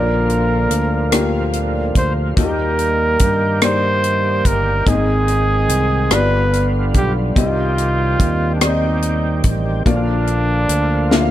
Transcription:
Already playing: fingered electric bass A#1, upright piano A#2 A#3 D4 F4 D5, tonewheel organ D3 F3 A#3 F4, trumpet A#4
0.30 closed hi-hat
0.70 fingered electric bass D2, closed hi-hat
1.12 upright piano A#3 D4 F4 G4, cross-stick, closed hi-hat
1.53 closed hi-hat
1.95 fingered electric bass D2, trumpet C5, kick, closed hi-hat
2.36 fingered electric bass D#2, upright piano D#3 A#3 D#4 F4 D#5, tonewheel organ D#3 G3 A#3 G4, trumpet A#4, kick, closed hi-hat
2.44 upright piano G4
2.79 closed hi-hat
3.19 fingered electric bass G2, kick, closed hi-hat
3.61 upright piano A#3 D#4 G4 D5, trumpet C5, cross-stick, closed hi-hat
4.04 closed hi-hat
4.45 fingered electric bass G1, trumpet A#4, kick, closed hi-hat
4.86 fingered electric bass G#1, upright piano G#2 A#3 D#4 G#4 D#5, tonewheel organ D#3 G#3 C4 G#4, trumpet G#4, kick, closed hi-hat
4.92 upright piano C4
5.28 closed hi-hat
5.69 fingered electric bass C2, closed hi-hat
6.10 fingered electric bass G1, upright piano G2 B3 F4 G4 D5, tonewheel organ D3 G3 B3 F4, trumpet B4, cross-stick, closed hi-hat
6.53 closed hi-hat
6.94 fingered electric bass B1, trumpet G4, kick, closed hi-hat
7.35 fingered electric bass C2, upright piano C3 C4 D#4 G4 D#5, tonewheel organ D#3 C4 G4, trumpet F4, kick, closed hi-hat
7.78 closed hi-hat
8.19 fingered electric bass D#2, kick, closed hi-hat
8.55 trumpet D4
8.61 upright piano C4 D#4 G4 D5, trumpet D#4, cross-stick, closed hi-hat
8.69 upright piano D#5
9.02 closed hi-hat
9.44 fingered electric bass A1, kick, closed hi-hat
9.86 fingered electric bass A#1, upright piano A#2 A#3 D4 F4 D5, tonewheel organ D3 F3 A#3 F4, trumpet D4, kick, closed hi-hat
10.27 closed hi-hat
10.69 fingered electric bass D2, closed hi-hat
11.11 upright piano A#3 D4 F4 E5, snare
11.19 upright piano F5

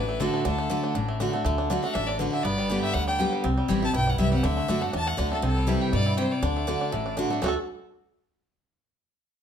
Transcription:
Already playing: upright bass A1, steel-string acoustic guitar A2, five-string banjo D4, fiddle B4
0.09 five-string banjo A3
0.20 steel-string acoustic guitar D3 A3 D4 F#4, five-string banjo D4, fiddle A4
0.34 five-string banjo A3
0.45 upright bass D2, steel-string acoustic guitar D3, five-string banjo D4, fiddle A4
0.58 five-string banjo A3
0.70 steel-string acoustic guitar D3 A3 D4 F#4, five-string banjo D4
0.84 five-string banjo D4
0.95 upright bass A1, steel-string acoustic guitar A2, five-string banjo D4
1.08 five-string banjo A3
1.20 steel-string acoustic guitar D3 A3 D4 F#4, five-string banjo D4
1.33 five-string banjo A3, steel-string acoustic guitar D4 F#4
1.45 upright bass D2, steel-string acoustic guitar D3, five-string banjo A3
1.58 five-string banjo D4
1.70 steel-string acoustic guitar D3 A3 D4 F#4, five-string banjo D4
1.83 five-string banjo A3, steel-string acoustic guitar D4 F#4, fiddle F#5
1.94 upright bass A1, steel-string acoustic guitar A2, five-string banjo D4, fiddle E5
2.07 five-string banjo D4, fiddle D5
2.18 steel-string acoustic guitar D3 A3 D4 F#4, five-string banjo D3, fiddle B4
2.32 five-string banjo D4, fiddle E5
2.43 upright bass G1, steel-string acoustic guitar G2, five-string banjo B3, fiddle D5
2.58 five-string banjo G3
2.70 steel-string acoustic guitar D3 G3 B3 G4, five-string banjo D4
2.82 five-string banjo G4, fiddle E5
2.93 upright bass D2, steel-string acoustic guitar D3, five-string banjo G3, fiddle F#5
3.07 five-string banjo D4, fiddle G5
3.18 steel-string acoustic guitar D3 G3 B3 G4, five-string banjo G4
3.33 five-string banjo G3
3.44 upright bass C2, steel-string acoustic guitar C3, five-string banjo C4
3.58 five-string banjo G3
3.68 upright bass A1, steel-string acoustic guitar E3 G3 C4 E4, five-string banjo G4
3.82 five-string banjo C4, steel-string acoustic guitar C4 E4, fiddle A5
3.94 upright bass B1, steel-string acoustic guitar G2, five-string banjo E4, fiddle G5
4.07 five-string banjo G3, fiddle F#5
4.18 upright bass C2, steel-string acoustic guitar E3 G3 C4 E4, five-string banjo C4, fiddle E5
4.32 five-string banjo G3, steel-string acoustic guitar C4 E4, fiddle F#5
4.43 upright bass D2, steel-string acoustic guitar D3, five-string banjo D4, fiddle E5
4.57 five-string banjo A3
4.68 upright bass F#2, steel-string acoustic guitar D3 A3 D4 F#4, five-string banjo D4
4.81 five-string banjo A3, steel-string acoustic guitar D4 F#4, fiddle F#5
4.93 upright bass E2, steel-string acoustic guitar A2, five-string banjo D4, fiddle A5
5.07 five-string banjo A3, fiddle F#5
5.17 upright bass D2, steel-string acoustic guitar D3 A3 D4 F#4, five-string banjo D4
5.30 five-string banjo A3, steel-string acoustic guitar D4 F#4, fiddle A4
5.42 upright bass C2, steel-string acoustic guitar C3, five-string banjo C4, fiddle A4
5.57 five-string banjo G3
5.67 steel-string acoustic guitar E3 G3 C4 E4, five-string banjo E4, fiddle G4
5.81 five-string banjo G4
5.93 upright bass G2, steel-string acoustic guitar B2, five-string banjo G3, fiddle D5
6.06 five-string banjo E4
6.17 steel-string acoustic guitar C3, five-string banjo G4, fiddle C5
6.31 five-string banjo G3, fiddle D5
6.42 upright bass D2, steel-string acoustic guitar D3, five-string banjo D4
6.57 five-string banjo A3
6.67 steel-string acoustic guitar D3 A3 D4 F#4, five-string banjo D4
6.81 five-string banjo D4
6.92 upright bass A1, steel-string acoustic guitar A2, five-string banjo A3
7.06 five-string banjo D4
7.17 steel-string acoustic guitar D3 A3 D4 F#4, five-string banjo D4
7.30 five-string banjo A3, steel-string acoustic guitar D4 F#4
7.42 upright bass D2, steel-string acoustic guitar D3 A3 D4 F#4, five-string banjo A3 D4
7.46 five-string banjo F#4 A4

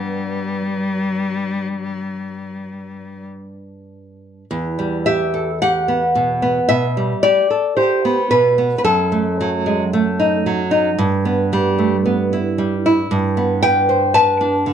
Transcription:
Already playing: nylon-string guitar G2 G3 B3, cello G3
4.51 nylon-string guitar E2
4.79 nylon-string guitar G3
5.06 nylon-string guitar G4 E5
5.34 nylon-string guitar A4
5.62 nylon-string guitar G4 F#5
5.88 nylon-string guitar B3
6.15 nylon-string guitar B2
6.42 nylon-string guitar B3
6.69 nylon-string guitar B2 E5
6.97 nylon-string guitar G3
7.23 nylon-string guitar G4 D5
7.50 nylon-string guitar A4
7.77 nylon-string guitar G4 C5
8.05 nylon-string guitar B3
8.31 nylon-string guitar B2 B4
8.58 nylon-string guitar B3
8.78 nylon-string guitar B4
8.85 nylon-string guitar F#2 A4
9.12 nylon-string guitar A3
9.40 nylon-string guitar F#3
9.66 nylon-string guitar G#3
9.93 nylon-string guitar A3
10.19 nylon-string guitar D#4
10.46 nylon-string guitar F#3
10.71 nylon-string guitar D#4
10.99 nylon-string guitar G2
11.25 nylon-string guitar B3
11.53 nylon-string guitar G3
11.79 nylon-string guitar A3
12.06 nylon-string guitar B3
12.33 nylon-string guitar E4
12.58 nylon-string guitar G3
12.86 nylon-string guitar E4
13.11 nylon-string guitar G2
13.37 nylon-string guitar B3
13.62 nylon-string guitar B4 G5
13.89 nylon-string guitar C5
14.14 nylon-string guitar B4 A5
14.41 nylon-string guitar D4
14.66 nylon-string guitar D3

